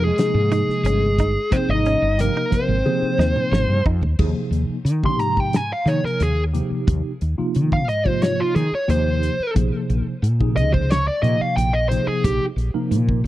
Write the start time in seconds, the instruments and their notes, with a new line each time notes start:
Already playing: fretless electric bass F2
0.04 trombone G#3, lead electric guitar G#4
0.18 tine electric piano C3 F3 A#3 D#4 G#4, snare, closed hi-hat
0.34 fretless electric bass G#2
0.52 trombone G#3, clean electric guitar D#4, lead electric guitar G#4, closed hi-hat
0.68 muted fretless electric bass stroke, snare
0.83 fretless electric bass G1, clean electric guitar C#4, closed hi-hat
1.18 clean electric guitar D#4, kick, closed hi-hat
1.51 tine electric piano C3 F3 A#3 D#4 G#4, clean electric guitar C4, trombone C4, lead electric guitar C5, kick, closed hi-hat
1.69 fretless electric bass G#1, trombone D#4, lead electric guitar D#5
1.86 clean electric guitar C#4, closed hi-hat
2.02 fretless electric bass G1
2.18 tine electric piano C3 F3 A#3 D#4 G4, trombone A#3, lead electric guitar A#4, closed hi-hat
2.37 clean electric guitar D#4
2.51 tine electric piano C3 F3 A#3 D#4 A#4, lead electric guitar C5, kick, closed hi-hat
2.55 trombone C4
2.68 fretless electric bass G#1
2.85 tine electric piano C3 F3 A#3 D#4 G#4, high tom
3.02 muted fretless electric bass stroke
3.18 fretless electric bass D#2, clean electric guitar D#4, snare
3.36 mid tom
3.51 fretless electric bass G#1, clean electric guitar C#3, snare
3.68 fretless electric bass G2
3.85 fretless electric bass F2, clean electric guitar D#4, kick
4.01 fretless electric bass D#2, floor tom
4.19 fretless electric bass D#2, tine electric piano C3 F3 A#3 D#4 G#4, kick, crash
4.51 fretless electric bass D#2, closed hi-hat
4.69 muted fretless electric bass stroke
4.85 fretless electric bass D#3, closed hi-hat
5.03 tine electric piano C3 F3 A#3 D#4 G4, lead electric guitar C6, kick
5.19 fretless electric bass G#2, lead electric guitar A#5, closed hi-hat
5.37 lead electric guitar G5, kick
5.53 lead electric guitar G#5, snare, closed hi-hat
5.73 lead electric guitar F5
5.85 tine electric piano C3 F3 A#3 D#4 G#4, fretless electric bass D#3, lead electric guitar C#5, closed hi-hat
6.03 lead electric guitar A#4, muted fretless electric bass stroke, snare
6.20 fretless electric bass D#2, lead electric guitar G#4, closed hi-hat
6.53 tine electric piano C3 F3 A#3 D#4 G4, closed hi-hat
6.71 muted fretless electric bass stroke
6.87 fretless electric bass D#2, kick, closed hi-hat
7.21 fretless electric bass D#2, closed hi-hat
7.38 tine electric piano C3 F3 A#3 D#4 F4, muted fretless electric bass stroke
7.55 fretless electric bass D#3, closed hi-hat
7.72 lead electric guitar F5, kick
7.89 fretless electric bass G#2, lead electric guitar D#5, closed hi-hat
8.05 tine electric piano C3 F3 A#3 D#4 F4, lead electric guitar C5, kick
8.22 lead electric guitar C#5, snare, closed hi-hat
8.40 lead electric guitar F4
8.55 fretless electric bass D#3, lead electric guitar G#4, closed hi-hat
8.72 lead electric guitar C#5, muted fretless electric bass stroke
8.88 fretless electric bass D#2, tine electric piano C3 F3 A#3 D#4 G4, lead electric guitar C5, closed hi-hat
9.23 closed hi-hat
9.39 muted fretless electric bass stroke
9.55 fretless electric bass A#1, tine electric piano C3 F3 A#3 D#4 G#4, kick, closed hi-hat
9.89 fretless electric bass A#1, closed hi-hat
10.06 muted fretless electric bass stroke
10.22 fretless electric bass A#2, closed hi-hat
10.40 tine electric piano C3 F3 A#3 D#4 G#4, kick
10.56 fretless electric bass C#2, lead electric guitar D#5, closed hi-hat
10.73 lead electric guitar C5, kick
10.90 lead electric guitar C#5, snare, closed hi-hat
11.07 lead electric guitar D5
11.22 fretless electric bass A#2, tine electric piano C3 F3 A#3 D#4 G4, lead electric guitar D#5, closed hi-hat
11.41 lead electric guitar F5, muted fretless electric bass stroke
11.56 fretless electric bass A#1, lead electric guitar G5, closed hi-hat
11.73 lead electric guitar D#5
11.89 tine electric piano C3 F3 A#3 D#4 G#4, lead electric guitar C5, closed hi-hat
12.07 lead electric guitar G#4, muted fretless electric bass stroke
12.24 fretless electric bass A#1, lead electric guitar G4, kick, closed hi-hat
12.56 fretless electric bass A#1, closed hi-hat
12.74 tine electric piano C3 F3 A#3 D#4 A#4, muted fretless electric bass stroke
12.91 fretless electric bass A#2, closed hi-hat
13.09 kick
13.24 fretless electric bass C#2